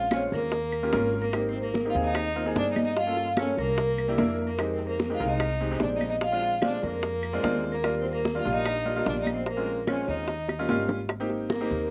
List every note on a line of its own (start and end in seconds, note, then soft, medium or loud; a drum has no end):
0.00 0.26 A#1 medium
0.00 0.13 F5 loud
0.11 0.52 G#3 medium
0.11 0.52 C4 medium
0.11 0.53 C#4 medium
0.11 0.22 C#4 medium
0.11 0.53 F4 medium
0.11 0.22 C#5 medium
0.11 high bongo medium
0.11 high conga medium
0.11 claves medium
0.32 0.89 D#2 medium
0.32 1.10 A#3 medium
0.32 1.10 A#4 medium
0.32 high bongo soft
0.32 high conga soft
0.52 high bongo medium
0.52 high conga soft
0.72 high conga soft
0.72 claves medium
0.83 0.90 A#3 medium
0.83 0.90 C#4 medium
0.83 0.90 F4 medium
0.83 0.90 G4 medium
0.93 1.89 G#1 medium
0.93 1.22 A#3 medium
0.93 1.22 C#4 medium
0.93 1.22 F4 medium
0.93 1.22 A#4 loud
0.93 high bongo medium
0.93 low bongo medium
0.93 high conga medium
1.13 high bongo soft
1.13 high conga soft
1.21 1.46 A#3 medium
1.21 1.46 A#4 medium
1.33 1.69 A#3 medium
1.33 1.69 C4 medium
1.33 1.69 D#4 medium
1.33 1.70 G4 medium
1.33 high bongo medium
1.33 high conga soft
1.33 claves medium
1.49 1.61 C4 medium
1.49 1.62 C5 medium
1.54 high bongo soft
1.54 high conga soft
1.62 1.87 A#3 medium
1.62 1.87 A#4 medium
1.74 high bongo medium
1.74 high conga medium
1.85 1.92 A#3 medium
1.85 1.92 C4 medium
1.85 1.92 D#4 medium
1.85 1.92 G4 medium
1.90 1.95 F4 medium
1.90 1.96 F5 medium
1.95 2.52 D#2 medium
1.95 2.23 A#3 medium
1.95 2.23 C4 medium
1.95 2.24 D#4 medium
1.95 2.24 G#4 medium
1.95 high bongo soft
1.95 high conga soft
2.03 2.53 D#4 medium
2.03 2.53 D#5 medium
2.15 high bongo medium
2.15 high conga soft
2.15 claves medium
2.36 2.43 A#3 medium
2.36 2.43 C4 medium
2.36 2.43 D#4 medium
2.36 2.43 F4 medium
2.36 high conga soft
2.46 2.88 A#3 medium
2.46 2.89 C4 medium
2.46 2.89 D#4 medium
2.46 2.89 G#4 medium
2.56 3.51 G2 medium
2.56 2.69 D4 medium
2.56 2.70 D5 medium
2.56 high bongo medium
2.56 low bongo medium
2.56 high conga medium
2.71 2.83 D#4 medium
2.71 2.84 D#5 medium
2.76 high bongo soft
2.76 high conga medium
2.76 claves medium
2.84 2.96 D#4 medium
2.84 2.97 D#5 loud
2.97 3.35 F4 medium
2.97 3.35 F5 medium
2.97 high bongo medium
2.97 high conga soft
3.07 3.28 A#3 medium
3.07 3.28 C#4 medium
3.07 3.28 F4 medium
3.07 3.28 A4 medium
3.17 high bongo soft
3.17 high conga soft
3.37 3.78 A#3 medium
3.37 3.78 C#4 medium
3.37 3.57 C#4 medium
3.37 3.78 F4 medium
3.37 3.78 A4 medium
3.37 3.59 C#5 medium
3.37 high bongo medium
3.37 high conga medium
3.37 claves medium
3.57 4.15 C2 medium
3.57 4.36 A#3 medium
3.57 4.35 A#4 medium
3.57 high bongo soft
3.57 high conga soft
3.78 high bongo medium
3.78 high conga soft
3.98 high conga soft
3.98 claves medium
4.08 4.15 A#3 medium
4.08 4.15 D4 medium
4.08 4.15 E4 medium
4.08 4.16 G4 medium
4.18 5.14 F2 medium
4.18 4.47 A#3 medium
4.18 4.47 D4 medium
4.18 4.47 E4 medium
4.18 4.47 A#4 medium
4.18 high bongo medium
4.18 low bongo medium
4.18 high conga medium
4.38 high bongo soft
4.38 high conga soft
4.47 4.71 A#3 medium
4.47 4.74 A#4 medium
4.58 4.94 G#3 medium
4.58 4.94 C4 medium
4.58 4.95 D#4 medium
4.58 4.95 G4 medium
4.58 high bongo medium
4.58 high conga soft
4.58 claves medium
4.74 4.86 C4 medium
4.74 4.86 C5 medium
4.79 high bongo soft
4.79 high conga soft
4.87 5.12 A#3 medium
4.87 5.15 A#4 medium
4.99 high bongo medium
4.99 high conga medium
5.10 5.17 G#3 medium
5.10 5.17 C4 medium
5.10 5.17 D#4 medium
5.10 5.17 G4 medium
5.15 5.27 F4 medium
5.15 5.28 F5 medium
5.20 5.77 C2 medium
5.20 5.48 G#3 medium
5.20 5.49 C4 medium
5.20 5.49 D#4 medium
5.20 5.49 A#4 medium
5.20 high bongo soft
5.20 high conga soft
5.28 5.78 D#4 medium
5.28 5.83 D#5 medium
5.40 high bongo medium
5.40 high conga soft
5.40 claves medium
5.60 5.68 G#3 medium
5.60 5.68 C4 medium
5.60 5.68 D#4 medium
5.60 5.68 G4 medium
5.60 high conga soft
5.71 6.14 G#3 medium
5.71 6.14 C4 medium
5.71 6.14 D#4 medium
5.71 6.14 G4 medium
5.80 6.77 A#1 medium
5.80 5.89 D4 medium
5.80 5.88 D5 medium
5.80 high bongo medium
5.80 low bongo medium
5.80 high conga medium
5.96 6.08 D#4 medium
5.96 6.08 D#5 medium
6.00 high bongo soft
6.00 high conga medium
6.00 claves medium
6.10 6.16 D#4 medium
6.10 6.16 D#5 loud
6.21 6.61 F4 medium
6.21 6.64 F5 medium
6.21 high bongo medium
6.21 high conga soft
6.32 6.53 G#3 medium
6.32 6.53 C4 medium
6.32 6.53 D4 medium
6.32 6.53 F4 medium
6.42 high bongo soft
6.42 high conga soft
6.62 7.12 G#3 medium
6.62 7.12 C4 medium
6.62 7.12 D4 medium
6.62 6.83 D4 medium
6.62 7.12 F4 medium
6.62 6.82 D5 medium
6.62 high bongo medium
6.62 high conga loud
6.62 claves medium
6.83 7.40 F2 medium
6.83 7.61 A#3 medium
6.83 7.61 A#4 medium
6.83 high bongo soft
6.83 high conga soft
7.03 high bongo medium
7.03 high conga soft
7.23 high conga soft
7.23 claves medium
7.33 7.40 G#3 medium
7.33 7.40 C4 medium
7.33 7.41 D4 medium
7.33 7.41 F4 medium
7.43 8.39 D#2 medium
7.43 7.72 G#3 medium
7.43 7.72 C4 medium
7.43 7.72 D4 medium
7.43 7.72 F4 medium
7.43 high bongo medium
7.43 low bongo medium
7.43 high conga medium
7.64 high bongo soft
7.64 high conga soft
7.72 7.97 A#3 medium
7.72 7.99 A#4 medium
7.83 8.20 G3 medium
7.83 8.20 A#3 medium
7.83 8.20 D4 medium
7.83 8.20 F4 medium
7.83 high bongo medium
7.83 high conga soft
7.83 claves medium
7.99 8.11 C4 medium
7.99 8.13 C5 medium
8.05 high bongo soft
8.05 high conga soft
8.13 8.38 A#3 medium
8.13 8.40 A#4 medium
8.25 high bongo medium
8.25 high conga medium
8.35 8.42 G3 medium
8.35 8.42 A#3 medium
8.35 8.42 D4 medium
8.35 8.42 F4 medium
8.39 8.52 F4 medium
8.39 8.52 F5 medium
8.45 9.03 A#1 medium
8.45 8.74 G3 medium
8.45 8.74 A#3 medium
8.45 8.74 D4 medium
8.45 8.74 F4 medium
8.45 high bongo soft
8.45 high conga soft
8.53 9.03 D#4 medium
8.53 9.08 D#5 medium
8.66 high bongo medium
8.66 high conga soft
8.66 claves medium
8.85 8.93 G3 medium
8.85 8.93 A#3 medium
8.85 8.93 D4 medium
8.85 8.93 F4 medium
8.85 high conga soft
8.96 9.39 G3 medium
8.96 9.39 A#3 medium
8.96 9.39 D4 medium
8.96 9.39 F4 medium
9.06 10.02 A#1 medium
9.06 9.20 D4 medium
9.06 9.19 D5 medium
9.06 high bongo medium
9.06 low bongo medium
9.06 high conga medium
9.21 9.33 D#4 medium
9.21 9.33 D#5 medium
9.26 high bongo soft
9.26 high conga medium
9.26 claves medium
9.34 9.47 C4 medium
9.34 9.48 C5 medium
9.46 9.86 A#3 medium
9.46 9.85 A#4 medium
9.46 high bongo medium
9.46 high conga soft
9.57 9.78 G#3 medium
9.57 9.79 C4 medium
9.57 9.79 C#4 medium
9.57 9.79 F4 medium
9.67 high bongo soft
9.67 high conga soft
9.87 10.29 G#3 medium
9.87 10.29 C4 medium
9.87 10.29 C#4 medium
9.87 10.07 C#4 medium
9.87 10.29 F4 medium
9.87 10.09 C#5 medium
9.87 high bongo medium
9.87 high conga medium
9.87 claves medium
10.07 10.65 D#2 medium
10.07 10.86 D#4 medium
10.07 10.86 D#5 medium
10.07 high bongo soft
10.07 high conga soft
10.28 high bongo medium
10.28 high conga soft
10.49 high bongo medium
10.49 high conga soft
10.49 claves medium
10.59 10.66 G3 medium
10.59 10.66 A#3 medium
10.59 10.66 C#4 medium
10.59 10.66 F4 medium
10.69 11.65 G#1 medium
10.69 10.98 G3 medium
10.69 10.98 A#3 medium
10.69 10.98 C#4 medium
10.69 10.98 F4 loud
10.69 high bongo medium
10.69 high conga medium
10.89 low bongo medium
10.89 high conga soft
11.09 high bongo medium
11.09 high conga soft
11.09 claves medium
11.20 11.49 A#3 medium
11.20 11.49 C4 medium
11.20 11.49 D#4 medium
11.20 11.49 G4 medium
11.30 high bongo soft
11.30 high conga soft
11.50 11.88 A#3 medium
11.50 11.90 A#4 medium
11.50 high bongo medium
11.50 high conga medium
11.60 11.89 A#3 medium
11.60 11.89 C4 medium
11.60 11.89 D#4 medium
11.60 11.89 G4 medium
11.70 11.90 D#2 medium
11.70 high conga soft